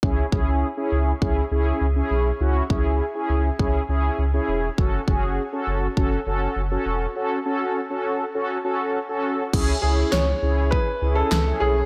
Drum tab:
CC |--------|--------|--------|--------|
SD |--------|--------|--------|--------|
BD |oo--o---|-o--o---|oo--o---|--------|

CC |x-------|
SD |--o---o-|
BD |o---o---|